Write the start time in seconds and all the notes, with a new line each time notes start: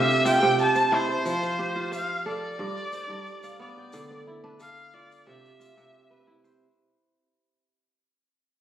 Already playing: C3 D4 F4 G4 A4 E5
0.10 shaker
0.25 F4 G5, shaker
0.43 C3
0.59 A5, shaker
0.75 C5, shaker
0.92 E4 C5
1.09 C5
1.25 F3, shaker
1.43 F5, shaker
1.59 G4
1.76 F4
1.92 C5 F5, shaker
2.26 A4 D5
2.59 G2 D5
2.77 shaker
2.92 C5, shaker
3.09 G2
3.26 shaker
3.43 F5, shaker
3.60 B3 D5
3.77 G5
3.93 D3, shaker
4.11 D5
4.27 E4
4.44 D4 B4
4.60 A4 F5, shaker
4.77 shaker
4.94 F4 D5
5.11 shaker
5.27 C3 G4 E5
5.45 shaker
5.60 F4, shaker
5.77 C3, shaker
6.10 B4
6.27 E4
6.44 C5, shaker